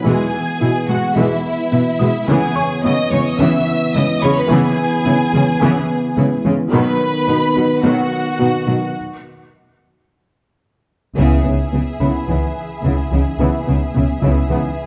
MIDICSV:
0, 0, Header, 1, 10, 480
1, 0, Start_track
1, 0, Key_signature, 4, "minor"
1, 0, Tempo, 555556
1, 54, Time_signature, 4, 2, 24, 8
1, 12841, End_track
2, 0, Start_track
2, 0, Title_t, "Grand piano"
2, 0, Program_c, 0, 0
2, 0, Control_c, 0, 64, 127
2, 69, Control_c, 0, 64, 0
2, 195, Control_c, 0, 64, 127
2, 1722, Note_on_c, 0, 87, 38
2, 1991, Control_c, 0, 64, 0
2, 2159, Control_c, 0, 64, 127
2, 2208, Note_on_c, 0, 73, 38
2, 2209, Note_on_c, 0, 85, 53
2, 3133, Note_off_c, 0, 87, 0
2, 3616, Note_off_c, 0, 73, 0
2, 3617, Note_off_c, 0, 85, 0
2, 3645, Note_on_c, 0, 83, 62
2, 5055, Note_off_c, 0, 83, 0
2, 5829, Control_c, 0, 64, 0
2, 5962, Control_c, 0, 64, 127
2, 7751, Control_c, 0, 64, 0
2, 7872, Control_c, 0, 64, 127
2, 9671, Control_c, 0, 64, 0
2, 9812, Control_c, 0, 64, 127
2, 10370, Note_on_c, 0, 83, 31
2, 10375, Note_on_c, 0, 71, 24
2, 11777, Note_off_c, 0, 83, 0
2, 11780, Note_off_c, 0, 71, 0
2, 12841, End_track
3, 0, Start_track
3, 0, Title_t, "Violin section"
3, 0, Program_c, 1, 48
3, 42, Note_on_c, 1, 80, 88
3, 768, Note_off_c, 1, 80, 0
3, 768, Note_on_c, 1, 78, 70
3, 1005, Note_on_c, 1, 76, 76
3, 1006, Note_off_c, 1, 78, 0
3, 1950, Note_off_c, 1, 76, 0
3, 1973, Note_on_c, 1, 80, 93
3, 2444, Note_off_c, 1, 80, 0
3, 2450, Note_on_c, 1, 87, 83
3, 2687, Note_off_c, 1, 87, 0
3, 2694, Note_on_c, 1, 85, 68
3, 2814, Note_off_c, 1, 85, 0
3, 2816, Note_on_c, 1, 87, 77
3, 2935, Note_off_c, 1, 87, 0
3, 2935, Note_on_c, 1, 88, 87
3, 3414, Note_off_c, 1, 88, 0
3, 3419, Note_on_c, 1, 87, 93
3, 3651, Note_off_c, 1, 87, 0
3, 3653, Note_on_c, 1, 85, 83
3, 3773, Note_off_c, 1, 85, 0
3, 3773, Note_on_c, 1, 83, 74
3, 3893, Note_off_c, 1, 83, 0
3, 3894, Note_on_c, 1, 80, 103
3, 5574, Note_off_c, 1, 80, 0
3, 5809, Note_on_c, 1, 83, 95
3, 6737, Note_off_c, 1, 83, 0
3, 6769, Note_on_c, 1, 78, 75
3, 7712, Note_off_c, 1, 78, 0
3, 12841, End_track
4, 0, Start_track
4, 0, Title_t, "Violin section"
4, 0, Program_c, 2, 48
4, 52, Note_on_c, 2, 68, 53
4, 759, Note_off_c, 2, 68, 0
4, 771, Note_on_c, 2, 66, 59
4, 1010, Note_on_c, 2, 64, 67
4, 1013, Note_off_c, 2, 66, 0
4, 1952, Note_off_c, 2, 64, 0
4, 1975, Note_on_c, 2, 68, 68
4, 2454, Note_off_c, 2, 68, 0
4, 2460, Note_on_c, 2, 75, 76
4, 2692, Note_off_c, 2, 75, 0
4, 2696, Note_on_c, 2, 73, 61
4, 2812, Note_off_c, 2, 73, 0
4, 2816, Note_on_c, 2, 75, 63
4, 2933, Note_off_c, 2, 75, 0
4, 2936, Note_on_c, 2, 76, 81
4, 3405, Note_off_c, 2, 76, 0
4, 3420, Note_on_c, 2, 75, 67
4, 3656, Note_on_c, 2, 73, 73
4, 3657, Note_off_c, 2, 75, 0
4, 3775, Note_off_c, 2, 73, 0
4, 3779, Note_on_c, 2, 71, 67
4, 3893, Note_on_c, 2, 68, 69
4, 3896, Note_off_c, 2, 71, 0
4, 5573, Note_off_c, 2, 68, 0
4, 5823, Note_on_c, 2, 71, 76
4, 6744, Note_off_c, 2, 71, 0
4, 6779, Note_on_c, 2, 66, 69
4, 7736, Note_off_c, 2, 66, 0
4, 9651, Note_on_c, 2, 68, 41
4, 9651, Note_on_c, 2, 76, 37
4, 12841, Note_off_c, 2, 68, 0
4, 12841, Note_off_c, 2, 76, 0
4, 12841, End_track
5, 0, Start_track
5, 0, Title_t, "Viola section"
5, 0, Program_c, 3, 48
5, 53, Note_on_c, 3, 52, 55
5, 54, Note_on_c, 3, 56, 61
5, 277, Note_off_c, 3, 52, 0
5, 277, Note_off_c, 3, 56, 0
5, 528, Note_on_c, 3, 64, 47
5, 529, Note_on_c, 3, 59, 44
5, 598, Note_off_c, 3, 59, 0
5, 598, Note_off_c, 3, 64, 0
5, 771, Note_on_c, 3, 56, 41
5, 771, Note_on_c, 3, 59, 37
5, 840, Note_off_c, 3, 56, 0
5, 840, Note_off_c, 3, 59, 0
5, 1008, Note_on_c, 3, 52, 58
5, 1010, Note_on_c, 3, 56, 58
5, 1234, Note_off_c, 3, 52, 0
5, 1235, Note_off_c, 3, 56, 0
5, 1490, Note_on_c, 3, 64, 41
5, 1491, Note_on_c, 3, 59, 42
5, 1559, Note_off_c, 3, 64, 0
5, 1560, Note_off_c, 3, 59, 0
5, 1729, Note_on_c, 3, 56, 56
5, 1730, Note_on_c, 3, 59, 47
5, 1798, Note_off_c, 3, 56, 0
5, 1799, Note_off_c, 3, 59, 0
5, 1970, Note_on_c, 3, 52, 67
5, 1971, Note_on_c, 3, 59, 62
5, 2195, Note_off_c, 3, 52, 0
5, 2196, Note_off_c, 3, 59, 0
5, 2453, Note_on_c, 3, 59, 52
5, 2456, Note_on_c, 3, 64, 45
5, 2522, Note_off_c, 3, 59, 0
5, 2525, Note_off_c, 3, 64, 0
5, 2692, Note_on_c, 3, 61, 51
5, 2694, Note_on_c, 3, 56, 48
5, 2761, Note_off_c, 3, 61, 0
5, 2763, Note_off_c, 3, 56, 0
5, 2934, Note_on_c, 3, 52, 63
5, 2934, Note_on_c, 3, 59, 55
5, 3157, Note_off_c, 3, 52, 0
5, 3157, Note_off_c, 3, 59, 0
5, 3414, Note_on_c, 3, 59, 53
5, 3414, Note_on_c, 3, 64, 55
5, 3483, Note_off_c, 3, 59, 0
5, 3483, Note_off_c, 3, 64, 0
5, 3651, Note_on_c, 3, 56, 57
5, 3653, Note_on_c, 3, 61, 57
5, 3721, Note_off_c, 3, 56, 0
5, 3722, Note_off_c, 3, 61, 0
5, 3890, Note_on_c, 3, 59, 64
5, 3891, Note_on_c, 3, 52, 67
5, 4115, Note_off_c, 3, 59, 0
5, 4116, Note_off_c, 3, 52, 0
5, 4373, Note_on_c, 3, 59, 46
5, 4375, Note_on_c, 3, 64, 58
5, 4443, Note_off_c, 3, 59, 0
5, 4444, Note_off_c, 3, 64, 0
5, 4612, Note_on_c, 3, 56, 54
5, 4614, Note_on_c, 3, 61, 41
5, 4681, Note_off_c, 3, 56, 0
5, 4683, Note_off_c, 3, 61, 0
5, 4851, Note_on_c, 3, 52, 65
5, 4851, Note_on_c, 3, 59, 63
5, 5075, Note_off_c, 3, 52, 0
5, 5076, Note_off_c, 3, 59, 0
5, 5331, Note_on_c, 3, 64, 46
5, 5332, Note_on_c, 3, 59, 52
5, 5400, Note_off_c, 3, 64, 0
5, 5401, Note_off_c, 3, 59, 0
5, 5573, Note_on_c, 3, 61, 51
5, 5574, Note_on_c, 3, 56, 47
5, 5642, Note_off_c, 3, 61, 0
5, 5643, Note_off_c, 3, 56, 0
5, 5810, Note_on_c, 3, 51, 72
5, 5813, Note_on_c, 3, 54, 60
5, 6035, Note_off_c, 3, 51, 0
5, 6037, Note_off_c, 3, 54, 0
5, 6296, Note_on_c, 3, 59, 58
5, 6297, Note_on_c, 3, 63, 57
5, 6365, Note_off_c, 3, 59, 0
5, 6366, Note_off_c, 3, 63, 0
5, 6535, Note_on_c, 3, 54, 44
5, 6535, Note_on_c, 3, 59, 40
5, 6604, Note_off_c, 3, 54, 0
5, 6604, Note_off_c, 3, 59, 0
5, 6776, Note_on_c, 3, 51, 59
5, 6776, Note_on_c, 3, 54, 56
5, 6998, Note_off_c, 3, 51, 0
5, 6998, Note_off_c, 3, 54, 0
5, 7253, Note_on_c, 3, 59, 42
5, 7253, Note_on_c, 3, 63, 50
5, 7322, Note_off_c, 3, 59, 0
5, 7322, Note_off_c, 3, 63, 0
5, 7496, Note_on_c, 3, 59, 41
5, 7497, Note_on_c, 3, 54, 39
5, 7565, Note_off_c, 3, 59, 0
5, 7566, Note_off_c, 3, 54, 0
5, 9650, Note_on_c, 3, 64, 50
5, 9651, Note_on_c, 3, 59, 54
5, 9875, Note_off_c, 3, 59, 0
5, 9875, Note_off_c, 3, 64, 0
5, 9890, Note_on_c, 3, 63, 26
5, 9891, Note_on_c, 3, 59, 23
5, 9959, Note_off_c, 3, 63, 0
5, 9960, Note_off_c, 3, 59, 0
5, 10132, Note_on_c, 3, 59, 27
5, 10134, Note_on_c, 3, 64, 28
5, 10202, Note_off_c, 3, 59, 0
5, 10203, Note_off_c, 3, 64, 0
5, 10376, Note_on_c, 3, 59, 36
5, 10376, Note_on_c, 3, 64, 37
5, 10598, Note_off_c, 3, 59, 0
5, 10598, Note_off_c, 3, 64, 0
5, 10613, Note_on_c, 3, 59, 28
5, 10614, Note_on_c, 3, 63, 26
5, 10682, Note_off_c, 3, 59, 0
5, 10683, Note_off_c, 3, 63, 0
5, 11088, Note_on_c, 3, 59, 40
5, 11091, Note_on_c, 3, 64, 35
5, 11314, Note_off_c, 3, 59, 0
5, 11316, Note_off_c, 3, 64, 0
5, 11328, Note_on_c, 3, 59, 34
5, 11329, Note_on_c, 3, 63, 36
5, 11398, Note_off_c, 3, 59, 0
5, 11398, Note_off_c, 3, 63, 0
5, 11569, Note_on_c, 3, 59, 48
5, 11570, Note_on_c, 3, 64, 51
5, 11794, Note_off_c, 3, 59, 0
5, 11795, Note_off_c, 3, 64, 0
5, 11811, Note_on_c, 3, 59, 30
5, 11812, Note_on_c, 3, 63, 30
5, 11880, Note_off_c, 3, 59, 0
5, 11882, Note_off_c, 3, 63, 0
5, 12052, Note_on_c, 3, 59, 37
5, 12052, Note_on_c, 3, 64, 36
5, 12121, Note_off_c, 3, 59, 0
5, 12121, Note_off_c, 3, 64, 0
5, 12290, Note_on_c, 3, 59, 49
5, 12290, Note_on_c, 3, 64, 46
5, 12515, Note_off_c, 3, 59, 0
5, 12515, Note_off_c, 3, 64, 0
5, 12528, Note_on_c, 3, 59, 37
5, 12529, Note_on_c, 3, 63, 41
5, 12597, Note_off_c, 3, 59, 0
5, 12598, Note_off_c, 3, 63, 0
5, 12841, End_track
6, 0, Start_track
6, 0, Title_t, "French horn section"
6, 0, Program_c, 4, 60
6, 0, Note_on_c, 4, 59, 44
6, 56, Note_on_c, 4, 52, 52
6, 1830, Note_off_c, 4, 52, 0
6, 1830, Note_off_c, 4, 59, 0
6, 1977, Note_on_c, 4, 52, 54
6, 1978, Note_on_c, 4, 59, 61
6, 5781, Note_off_c, 4, 52, 0
6, 5781, Note_off_c, 4, 59, 0
6, 5815, Note_on_c, 4, 51, 62
6, 5817, Note_on_c, 4, 59, 56
6, 7701, Note_off_c, 4, 59, 0
6, 7734, Note_off_c, 4, 51, 0
6, 12841, End_track
7, 0, Start_track
7, 0, Title_t, "Trombone section"
7, 0, Program_c, 5, 61
7, 9649, Note_on_c, 5, 59, 50
7, 9651, Note_on_c, 5, 52, 45
7, 9874, Note_off_c, 5, 59, 0
7, 9875, Note_off_c, 5, 52, 0
7, 10605, Note_on_c, 5, 52, 32
7, 10607, Note_on_c, 5, 59, 35
7, 10776, Note_off_c, 5, 52, 0
7, 10776, Note_off_c, 5, 59, 0
7, 11574, Note_on_c, 5, 59, 43
7, 11576, Note_on_c, 5, 52, 41
7, 11741, Note_off_c, 5, 59, 0
7, 11742, Note_off_c, 5, 52, 0
7, 12529, Note_on_c, 5, 59, 44
7, 12530, Note_on_c, 5, 52, 43
7, 12698, Note_off_c, 5, 52, 0
7, 12698, Note_off_c, 5, 59, 0
7, 12841, End_track
8, 0, Start_track
8, 0, Title_t, "Synth pluck"
8, 0, Program_c, 6, 84
8, 50, Note_on_c, 6, 52, 69
8, 195, Note_off_c, 6, 52, 0
8, 527, Note_on_c, 6, 64, 46
8, 673, Note_off_c, 6, 64, 0
8, 770, Note_on_c, 6, 56, 51
8, 915, Note_off_c, 6, 56, 0
8, 1006, Note_on_c, 6, 52, 73
8, 1152, Note_off_c, 6, 52, 0
8, 1487, Note_on_c, 6, 59, 55
8, 1633, Note_off_c, 6, 59, 0
8, 1728, Note_on_c, 6, 56, 55
8, 1873, Note_off_c, 6, 56, 0
8, 1971, Note_on_c, 6, 49, 65
8, 2116, Note_off_c, 6, 49, 0
8, 2450, Note_on_c, 6, 59, 44
8, 2595, Note_off_c, 6, 59, 0
8, 2688, Note_on_c, 6, 52, 57
8, 2833, Note_off_c, 6, 52, 0
8, 2929, Note_on_c, 6, 49, 87
8, 3074, Note_off_c, 6, 49, 0
8, 3412, Note_on_c, 6, 56, 66
8, 3557, Note_off_c, 6, 56, 0
8, 3655, Note_on_c, 6, 52, 53
8, 3798, Note_off_c, 6, 52, 0
8, 3893, Note_on_c, 6, 49, 69
8, 4037, Note_off_c, 6, 49, 0
8, 4372, Note_on_c, 6, 59, 55
8, 4517, Note_off_c, 6, 59, 0
8, 4609, Note_on_c, 6, 52, 62
8, 4755, Note_off_c, 6, 52, 0
8, 4852, Note_on_c, 6, 49, 77
8, 4996, Note_off_c, 6, 49, 0
8, 5332, Note_on_c, 6, 56, 66
8, 5476, Note_off_c, 6, 56, 0
8, 5571, Note_on_c, 6, 52, 54
8, 5716, Note_off_c, 6, 52, 0
8, 5810, Note_on_c, 6, 59, 82
8, 5955, Note_off_c, 6, 59, 0
8, 6291, Note_on_c, 6, 71, 50
8, 6436, Note_off_c, 6, 71, 0
8, 6531, Note_on_c, 6, 63, 58
8, 6676, Note_off_c, 6, 63, 0
8, 6770, Note_on_c, 6, 59, 78
8, 6915, Note_off_c, 6, 59, 0
8, 7253, Note_on_c, 6, 66, 54
8, 7397, Note_off_c, 6, 66, 0
8, 7491, Note_on_c, 6, 63, 48
8, 7636, Note_off_c, 6, 63, 0
8, 9652, Note_on_c, 6, 49, 62
8, 9797, Note_off_c, 6, 49, 0
8, 9888, Note_on_c, 6, 59, 44
8, 10034, Note_off_c, 6, 59, 0
8, 10131, Note_on_c, 6, 59, 37
8, 10276, Note_off_c, 6, 59, 0
8, 10370, Note_on_c, 6, 49, 65
8, 10515, Note_off_c, 6, 49, 0
8, 10611, Note_on_c, 6, 52, 45
8, 10756, Note_off_c, 6, 52, 0
8, 11093, Note_on_c, 6, 49, 70
8, 11238, Note_off_c, 6, 49, 0
8, 11331, Note_on_c, 6, 52, 43
8, 11476, Note_off_c, 6, 52, 0
8, 11573, Note_on_c, 6, 49, 68
8, 11717, Note_off_c, 6, 49, 0
8, 11813, Note_on_c, 6, 59, 52
8, 11957, Note_off_c, 6, 59, 0
8, 12049, Note_on_c, 6, 59, 40
8, 12194, Note_off_c, 6, 59, 0
8, 12288, Note_on_c, 6, 49, 65
8, 12434, Note_off_c, 6, 49, 0
8, 12530, Note_on_c, 6, 52, 53
8, 12675, Note_off_c, 6, 52, 0
8, 12841, End_track
9, 0, Start_track
9, 0, Title_t, "Cello section"
9, 0, Program_c, 7, 48
9, 51, Note_on_c, 7, 47, 56
9, 120, Note_off_c, 7, 47, 0
9, 532, Note_on_c, 7, 47, 43
9, 602, Note_off_c, 7, 47, 0
9, 769, Note_on_c, 7, 47, 40
9, 838, Note_off_c, 7, 47, 0
9, 1011, Note_on_c, 7, 47, 63
9, 1080, Note_off_c, 7, 47, 0
9, 1490, Note_on_c, 7, 47, 45
9, 1559, Note_off_c, 7, 47, 0
9, 1732, Note_on_c, 7, 47, 52
9, 1801, Note_off_c, 7, 47, 0
9, 1974, Note_on_c, 7, 49, 60
9, 2043, Note_off_c, 7, 49, 0
9, 2457, Note_on_c, 7, 49, 46
9, 2526, Note_off_c, 7, 49, 0
9, 2696, Note_on_c, 7, 49, 49
9, 2765, Note_off_c, 7, 49, 0
9, 2937, Note_on_c, 7, 49, 70
9, 3006, Note_off_c, 7, 49, 0
9, 3415, Note_on_c, 7, 49, 47
9, 3484, Note_off_c, 7, 49, 0
9, 3655, Note_on_c, 7, 49, 59
9, 3724, Note_off_c, 7, 49, 0
9, 3897, Note_on_c, 7, 49, 71
9, 3967, Note_off_c, 7, 49, 0
9, 4374, Note_on_c, 7, 49, 48
9, 4443, Note_off_c, 7, 49, 0
9, 4617, Note_on_c, 7, 49, 53
9, 4686, Note_off_c, 7, 49, 0
9, 4855, Note_on_c, 7, 49, 63
9, 4924, Note_off_c, 7, 49, 0
9, 5337, Note_on_c, 7, 49, 52
9, 5406, Note_off_c, 7, 49, 0
9, 5574, Note_on_c, 7, 49, 57
9, 5643, Note_off_c, 7, 49, 0
9, 5812, Note_on_c, 7, 47, 69
9, 5881, Note_off_c, 7, 47, 0
9, 6293, Note_on_c, 7, 47, 47
9, 6362, Note_off_c, 7, 47, 0
9, 6538, Note_on_c, 7, 47, 40
9, 6607, Note_off_c, 7, 47, 0
9, 6776, Note_on_c, 7, 47, 65
9, 6845, Note_off_c, 7, 47, 0
9, 7256, Note_on_c, 7, 47, 40
9, 7325, Note_off_c, 7, 47, 0
9, 7493, Note_on_c, 7, 47, 44
9, 7562, Note_off_c, 7, 47, 0
9, 9652, Note_on_c, 7, 49, 46
9, 9876, Note_off_c, 7, 49, 0
9, 9892, Note_on_c, 7, 49, 27
9, 9961, Note_off_c, 7, 49, 0
9, 10135, Note_on_c, 7, 49, 27
9, 10204, Note_off_c, 7, 49, 0
9, 10373, Note_on_c, 7, 49, 39
9, 10442, Note_off_c, 7, 49, 0
9, 10612, Note_on_c, 7, 49, 31
9, 10681, Note_off_c, 7, 49, 0
9, 11094, Note_on_c, 7, 49, 39
9, 11163, Note_off_c, 7, 49, 0
9, 11335, Note_on_c, 7, 49, 34
9, 11404, Note_off_c, 7, 49, 0
9, 11576, Note_on_c, 7, 49, 45
9, 11645, Note_off_c, 7, 49, 0
9, 11816, Note_on_c, 7, 49, 32
9, 11885, Note_off_c, 7, 49, 0
9, 12056, Note_on_c, 7, 49, 35
9, 12125, Note_off_c, 7, 49, 0
9, 12294, Note_on_c, 7, 49, 51
9, 12363, Note_off_c, 7, 49, 0
9, 12536, Note_on_c, 7, 49, 38
9, 12605, Note_off_c, 7, 49, 0
9, 12841, End_track
10, 0, Start_track
10, 0, Title_t, "Double bass section"
10, 0, Program_c, 8, 48
10, 9651, Note_on_c, 8, 37, 53
10, 9876, Note_off_c, 8, 37, 0
10, 9892, Note_on_c, 8, 37, 28
10, 9961, Note_off_c, 8, 37, 0
10, 10136, Note_on_c, 8, 37, 29
10, 10205, Note_off_c, 8, 37, 0
10, 10372, Note_on_c, 8, 37, 37
10, 10441, Note_off_c, 8, 37, 0
10, 10612, Note_on_c, 8, 37, 28
10, 10681, Note_off_c, 8, 37, 0
10, 11089, Note_on_c, 8, 37, 46
10, 11158, Note_off_c, 8, 37, 0
10, 11333, Note_on_c, 8, 37, 33
10, 11402, Note_off_c, 8, 37, 0
10, 11570, Note_on_c, 8, 37, 43
10, 11639, Note_off_c, 8, 37, 0
10, 11816, Note_on_c, 8, 37, 32
10, 11885, Note_off_c, 8, 37, 0
10, 12053, Note_on_c, 8, 37, 41
10, 12123, Note_off_c, 8, 37, 0
10, 12292, Note_on_c, 8, 37, 53
10, 12361, Note_off_c, 8, 37, 0
10, 12533, Note_on_c, 8, 37, 38
10, 12602, Note_off_c, 8, 37, 0
10, 12841, End_track
0, 0, End_of_file